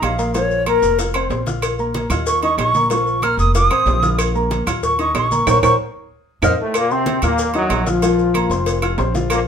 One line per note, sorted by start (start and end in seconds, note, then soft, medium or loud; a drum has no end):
0.00 0.77 A#1 medium
0.00 0.13 D#4 medium
0.00 0.13 D#5 medium
0.00 0.34 F5 medium
0.00 0.13 D#6 medium
0.00 cowbell medium
0.00 high conga soft
0.00 low timbale medium
0.00 low agogo loud
0.00 claves medium
0.00 maracas soft
0.18 0.31 A#3 medium
0.18 0.32 A#4 medium
0.18 0.32 A#5 medium
0.18 cowbell medium
0.18 maracas medium
0.34 0.61 F3 medium
0.34 0.61 F4 medium
0.34 0.66 C#5 loud
0.34 0.61 F5 medium
0.34 cowbell loud
0.34 high conga soft
0.34 low agogo medium
0.34 maracas medium
0.51 high conga soft
0.51 maracas soft
0.66 0.93 A#3 medium
0.66 0.93 A#4 medium
0.66 0.98 A#4 loud
0.66 0.93 A#5 medium
0.66 cowbell medium
0.66 high conga medium
0.66 low timbale medium
0.66 low agogo loud
0.66 claves medium
0.66 maracas soft
0.82 1.27 F1 medium
0.82 cowbell medium
0.82 high conga soft
0.82 maracas medium
0.99 1.12 F4 medium
0.99 1.12 F5 medium
0.99 1.12 F6 medium
0.99 cowbell loud
0.99 high conga soft
0.99 low agogo medium
0.99 maracas loud
1.14 1.41 C4 medium
1.14 1.41 C5 medium
1.14 1.41 C6 medium
1.14 high conga soft
1.14 low agogo loud
1.14 claves medium
1.14 maracas soft
1.30 2.05 A#1 medium
1.30 cowbell medium
1.30 high conga soft
1.30 low timbale medium
1.30 maracas soft
1.46 1.73 F4 medium
1.46 1.73 F5 medium
1.46 1.73 F6 medium
1.46 cowbell medium
1.46 high conga medium
1.46 maracas medium
1.62 cowbell loud
1.62 high conga soft
1.62 low agogo loud
1.62 claves medium
1.62 maracas medium
1.78 2.05 A#3 medium
1.78 2.05 A#4 medium
1.78 2.05 A#5 medium
1.78 high conga soft
1.78 maracas soft
1.94 cowbell medium
1.94 high conga loud
1.94 low timbale medium
1.94 low agogo medium
1.94 maracas soft
2.10 2.55 D#2 loud
2.10 2.37 F4 medium
2.10 2.37 F5 medium
2.10 2.37 F6 medium
2.10 cowbell medium
2.10 high conga soft
2.10 low conga medium
2.10 low agogo loud
2.10 claves medium
2.10 maracas medium
2.26 2.42 C#6 loud
2.26 cowbell loud
2.26 high conga soft
2.26 maracas loud
2.43 2.69 D#4 medium
2.43 2.69 D#5 medium
2.43 2.58 C#6 loud
2.43 2.69 D#6 medium
2.43 high conga soft
2.43 low agogo medium
2.43 maracas soft
2.58 3.33 A#1 loud
2.58 2.90 C#6 loud
2.58 cowbell medium
2.58 high conga soft
2.58 low timbale medium
2.58 low agogo loud
2.58 claves medium
2.58 maracas soft
2.74 2.88 A#3 medium
2.74 2.88 A#4 medium
2.74 2.88 A#5 medium
2.74 cowbell medium
2.74 high conga medium
2.74 maracas medium
2.90 3.17 F3 medium
2.90 3.17 F4 medium
2.90 3.17 F5 medium
2.90 3.25 C#6 medium
2.90 cowbell loud
2.90 high conga soft
2.90 low agogo medium
2.90 maracas medium
3.06 high conga soft
3.06 maracas soft
3.22 3.49 A#3 medium
3.22 3.49 A#4 medium
3.22 3.49 A#5 medium
3.22 3.38 F6 loud
3.22 cowbell medium
3.22 high conga medium
3.22 low timbale medium
3.22 low agogo loud
3.22 claves medium
3.22 maracas soft
3.37 3.68 F1 medium
3.37 3.55 D#6 loud
3.37 cowbell medium
3.37 high conga soft
3.37 maracas medium
3.54 3.68 F4 medium
3.54 3.68 F5 medium
3.54 4.17 D#6 loud
3.54 3.68 F6 medium
3.54 cowbell loud
3.54 high conga soft
3.54 low agogo medium
3.54 maracas medium
3.70 3.85 A1 medium
3.70 3.97 C4 medium
3.70 3.97 C5 medium
3.70 3.97 C6 medium
3.70 high conga soft
3.70 low agogo loud
3.70 claves medium
3.70 maracas soft
3.86 4.61 A#1 loud
3.86 cowbell medium
3.86 high conga soft
3.86 low timbale medium
3.86 maracas soft
4.03 4.29 F4 medium
4.03 4.29 F5 medium
4.03 4.29 F6 medium
4.03 cowbell medium
4.03 high conga medium
4.03 maracas medium
4.18 cowbell loud
4.18 low agogo loud
4.18 claves medium
4.18 maracas loud
4.35 4.61 A#3 medium
4.35 4.61 A#4 medium
4.35 4.61 A#5 medium
4.35 high conga soft
4.35 maracas soft
4.51 cowbell medium
4.51 high conga loud
4.51 low timbale medium
4.51 low agogo medium
4.51 maracas soft
4.67 5.11 D#2 loud
4.67 4.93 F4 medium
4.67 4.93 F5 medium
4.67 4.93 F6 medium
4.67 cowbell medium
4.67 high conga soft
4.67 low conga medium
4.67 low agogo loud
4.67 claves medium
4.67 maracas medium
4.83 4.99 C#6 loud
4.83 cowbell loud
4.83 high conga soft
4.83 low conga medium
4.83 maracas medium
4.99 5.25 D#4 medium
4.99 5.25 D#5 medium
4.99 5.16 C#6 loud
4.99 5.26 D#6 medium
4.99 high conga soft
4.99 low agogo medium
4.99 maracas soft
5.14 5.44 A#1 medium
5.14 5.47 C#6 medium
5.14 cowbell medium
5.14 high conga soft
5.14 low timbale medium
5.14 low agogo loud
5.14 claves medium
5.14 maracas soft
5.31 5.44 A#3 medium
5.31 5.44 A#4 medium
5.31 5.44 A#5 medium
5.31 cowbell medium
5.31 high conga medium
5.31 maracas medium
5.47 5.59 A#1 loud
5.47 5.57 A#4 loud
5.47 5.57 C5 loud
5.47 5.57 C#5 loud
5.47 5.59 C#6 loud
5.47 cowbell loud
5.47 low conga medium
5.47 high timbale loud
5.47 claves loud
5.47 maracas loud
5.63 5.75 A#1 medium
5.63 5.73 A#4 loud
5.63 5.73 C5 loud
5.63 5.73 C#5 loud
5.63 5.74 C#6 loud
5.63 cowbell loud
5.63 low conga loud
5.63 high timbale medium
5.63 claves loud
5.63 maracas loud
6.42 6.54 F2 loud
6.42 6.53 C5 loud
6.42 6.53 D#5 loud
6.42 6.53 F5 medium
6.42 6.54 F6 medium
6.42 cowbell loud
6.42 low conga loud
6.42 high timbale loud
6.42 claves loud
6.42 maracas loud
6.61 6.75 A2 medium
6.61 6.75 A3 loud
6.74 6.92 A#2 medium
6.74 6.91 A#3 loud
6.74 cowbell loud
6.74 high conga soft
6.74 low agogo loud
6.74 claves medium
6.74 maracas medium
6.91 7.23 C3 medium
6.91 7.17 C4 medium
6.91 7.23 C4 loud
6.91 7.17 C5 medium
6.91 7.18 C6 medium
6.91 high conga soft
6.91 maracas soft
7.06 cowbell medium
7.06 high conga loud
7.06 low timbale medium
7.06 low agogo medium
7.06 maracas soft
7.22 7.67 D#2 loud
7.22 7.53 A#2 medium
7.22 7.53 A#3 loud
7.22 7.49 F4 medium
7.22 7.49 F5 medium
7.22 7.50 F6 medium
7.22 cowbell medium
7.22 high conga soft
7.22 low conga medium
7.22 low agogo loud
7.22 claves medium
7.22 maracas medium
7.38 cowbell loud
7.38 high conga soft
7.38 maracas loud
7.54 7.85 F#2 medium
7.54 7.85 F#3 loud
7.54 7.81 D#4 medium
7.54 7.81 D#5 medium
7.54 7.81 D#6 medium
7.54 high conga soft
7.54 low agogo medium
7.54 maracas soft
7.69 8.45 A#1 medium
7.69 cowbell medium
7.69 high conga soft
7.69 low timbale medium
7.69 low agogo loud
7.69 claves medium
7.69 maracas soft
7.86 8.84 F3 loud
7.86 8.00 F4 medium
7.86 8.84 F4 medium
7.86 8.00 F5 medium
7.86 8.00 F6 medium
7.86 cowbell medium
7.86 high conga medium
7.86 maracas medium
8.02 8.29 F3 medium
8.02 8.29 F4 medium
8.02 8.29 F5 medium
8.02 cowbell loud
8.02 high conga soft
8.02 low agogo medium
8.02 maracas medium
8.18 high conga soft
8.18 maracas soft
8.34 8.48 A#3 medium
8.34 8.48 A#4 medium
8.34 8.48 A#5 medium
8.34 cowbell medium
8.34 high conga medium
8.34 low timbale medium
8.34 low agogo loud
8.34 claves medium
8.34 maracas soft
8.50 8.95 F1 loud
8.50 8.77 C4 medium
8.50 8.77 C5 medium
8.50 8.77 C6 medium
8.50 cowbell medium
8.50 high conga soft
8.50 maracas medium
8.66 cowbell loud
8.66 high conga soft
8.66 low agogo medium
8.66 maracas loud
8.82 8.96 F4 medium
8.82 8.96 F5 medium
8.82 8.96 F6 medium
8.82 high conga soft
8.82 low agogo loud
8.82 claves medium
8.82 maracas soft
8.98 9.48 A#1 loud
8.98 9.12 C4 medium
8.98 9.12 C5 medium
8.98 9.12 C6 medium
8.98 cowbell medium
8.98 high conga soft
8.98 low timbale medium
8.98 maracas soft
9.14 9.41 F3 medium
9.14 9.41 F4 medium
9.14 9.41 F5 medium
9.14 cowbell medium
9.14 high conga medium
9.14 maracas medium
9.30 9.39 A#2 medium
9.30 9.39 A#3 loud
9.30 cowbell loud
9.30 high conga soft
9.30 low agogo loud
9.30 claves medium
9.30 maracas loud